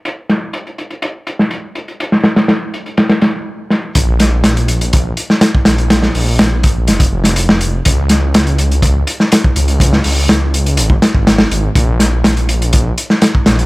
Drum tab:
HH |x-x-xxxxx-x-x-xx|x-xxx-xxxxx---x-|x-x-xxxxx-x-x-xx|x-o-x-x-xx-xx-x-|
SD |--o--------o----|-oooo---ooo---o-|--o-o------oo-o-|oo--o---o--o-o--|
BD |----------------|----------------|o-------o----o--|------o--o------|

HH |x-x-xxxxx-x-x-xx|x-o-x-xxx-x-x-x-|x-x-xxxxx-x-x-xx|
SD |--o-o------oo---|-o--o-----o-oo--|--o-o------oo-o-|
BD |o-------o----o--|o--------o-o----|o-------o----o--|